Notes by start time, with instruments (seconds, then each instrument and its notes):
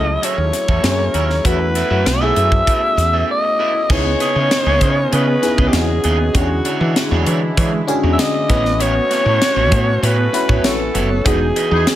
Already playing: fretless electric bass C#2, analog synth pad F#3 A3 E4, fm electric piano A3 C#4 E4 G#4 A4, alto saxophone D#5
0.07 muted clean electric guitar stroke
0.22 clean electric guitar C#4 F#4 A4 E5, alto saxophone C#5, closed hi-hat
0.38 fretless electric bass D#2, muted clean electric guitar stroke
0.53 muted clean electric guitar stroke, snare, closed hi-hat
0.68 fretless electric bass E2, clean electric guitar C#4 F#4 A4 E5, kick
0.83 fretless electric bass F#2, fm electric piano A#3 C#4 E4 G#4, analog synth pad A#4, snare, closed hi-hat
0.99 muted clean electric guitar stroke
1.14 fretless electric bass D#2, clean electric guitar C#4 F#4 A#4 E5, closed hi-hat
1.30 muted clean electric guitar stroke, snare
1.44 fretless electric bass E2, fm electric piano A3 C#4 E4 F#4, analog synth pad A3 B3, clean electric guitar E4 A4 B4 E5, alto saxophone B4, kick, closed hi-hat
1.60 muted clean electric guitar stroke
1.75 clean electric guitar E4 A4 B4 E5, snare, closed hi-hat
1.90 fretless electric bass F#2, fm electric piano A3 C#4 E4 F#4, clean electric guitar E4 A4 B4 E5
2.06 fretless electric bass B1, alto saxophone E5, muted clean electric guitar stroke, snare, closed hi-hat
2.21 fm electric piano A3 C#4 E4 G#4, clean electric guitar E4 A4 B4 E5
2.36 fretless electric bass F#2, clean electric guitar E4 A4 B4 E5, closed hi-hat
2.52 muted clean electric guitar stroke, kick
2.67 clean electric guitar E4 A4 B4 E5, kick, closed hi-hat
2.82 muted clean electric guitar stroke
2.97 fretless electric bass E2, muted clean electric guitar stroke, snare, closed hi-hat
3.13 clean electric guitar E4 A4 B4 E5
3.31 alto saxophone D#5
3.44 muted clean electric guitar stroke
3.59 clean electric guitar E4 A4 B4 E5
3.74 muted clean electric guitar stroke
3.89 fretless electric bass C#2, analog synth pad C#3 B3 C#4 D#5, fm electric piano B3 D#4 E4 G#4, clean electric guitar B3 E4 G#4 D#5, alto saxophone C#5, kick, crash
4.05 muted clean electric guitar stroke
4.20 clean electric guitar B3 E4 G#4 D#5, snare, closed hi-hat
4.36 fretless electric bass C#3, clean electric guitar B3 E4 G#4 D#5
4.51 muted clean electric guitar stroke, snare, closed hi-hat
4.66 fretless electric bass C#2, clean electric guitar B3 E4 G#4 D#5
4.81 fretless electric bass C#3, clean electric guitar B3 E4 G#4 D#5, kick, closed hi-hat
4.97 muted clean electric guitar stroke
5.12 fretless electric bass C#3, clean electric guitar B3 E4 G#4 D#5, alto saxophone B4, closed hi-hat
5.27 muted clean electric guitar stroke
5.42 fm electric piano B3 D#4 E4 G#4, muted clean electric guitar stroke, snare, closed hi-hat
5.58 fretless electric bass C#2, clean electric guitar B3 E4 G#4 D#5, kick
5.68 alto saxophone G4
5.72 fretless electric bass E2, fm electric piano B3 D#4 E4 F#4, alto saxophone G#4, snare, closed hi-hat
5.89 muted clean electric guitar stroke
6.04 fretless electric bass D#2, clean electric guitar B3 E4 G#4 D#5, closed hi-hat
6.19 muted clean electric guitar stroke
6.34 fretless electric bass E2, analog synth pad D3 G#3 E4, clean electric guitar G#3 D4 F#4 C#5, fm electric piano C#4 D4 F#4 G4, alto saxophone F#4, kick, closed hi-hat
6.41 fm electric piano G#4
6.50 muted clean electric guitar stroke
6.65 clean electric guitar G#3 D4 F#4 C#5, closed hi-hat
6.81 fretless electric bass E3, clean electric guitar G#3 D4 F#4 C#5
6.96 muted clean electric guitar stroke, snare, closed hi-hat
7.11 fretless electric bass E2, clean electric guitar G#3 D4 F#4 C#5
7.26 fretless electric bass E3, clean electric guitar G#3 D4 F#4 C#5, closed hi-hat
7.42 muted clean electric guitar stroke
7.57 fretless electric bass E3, clean electric guitar G#3 D4 F#4 C#5, kick, closed hi-hat
7.73 muted clean electric guitar stroke
7.87 fm electric piano C#4 D4 F#4 G#4, muted clean electric guitar stroke, closed hi-hat
8.03 fretless electric bass E2, clean electric guitar G#3 D4 F#4 C#5
8.13 alto saxophone E5
8.18 fm electric piano D3 C#4 F#4 G#4, alto saxophone D#5, snare, closed hi-hat
8.34 muted clean electric guitar stroke
8.49 fretless electric bass A1, analog synth pad A3 C#4 F#4, clean electric guitar B3 E4 F#4 C#5, fm electric piano C#4 E4 F#4 B4, kick, closed hi-hat
8.65 muted clean electric guitar stroke, snare
8.80 clean electric guitar B3 E4 F#4 C#5, alto saxophone C#5, closed hi-hat
8.95 muted clean electric guitar stroke
9.10 clean electric guitar B3 E4 F#4 C#5, snare, closed hi-hat
9.26 fretless electric bass A2, clean electric guitar B3 E4 F#4 C#5
9.42 muted clean electric guitar stroke, snare, closed hi-hat
9.56 fretless electric bass A1, clean electric guitar B3 E4 F#4 C#5
9.72 fretless electric bass A2, clean electric guitar B3 E4 F#4 C#5, kick, closed hi-hat
9.87 muted clean electric guitar stroke
10.03 fretless electric bass A2, clean electric guitar B3 E4 F#4 C#5, alto saxophone B4, closed hi-hat
10.18 muted clean electric guitar stroke
10.33 fm electric piano C#4 E4 F#4 B4, muted clean electric guitar stroke, snare, closed hi-hat
10.49 fretless electric bass A2, clean electric guitar B3 E4 F#4 C#5, kick
10.64 fretless electric bass A1, fm electric piano C#4 E4 F#4 C#5, alto saxophone A4, snare, closed hi-hat
10.80 muted clean electric guitar stroke
10.94 fretless electric bass F#1, clean electric guitar B3 E4 F#4 C#5, closed hi-hat
11.10 muted clean electric guitar stroke
11.25 fretless electric bass E1, analog synth pad E3 G#4, fm electric piano B3 D#4 F#4 G#4, clean electric guitar D#4 G#4 B4 D#5, alto saxophone G#4, kick, closed hi-hat
11.40 muted clean electric guitar stroke
11.56 clean electric guitar D#4 G#4 B4 D#5, closed hi-hat
11.71 fretless electric bass E2, horn section E3 D#4 G#4, clean electric guitar D#4 G#4 B4 D#5
11.86 muted clean electric guitar stroke, snare, closed hi-hat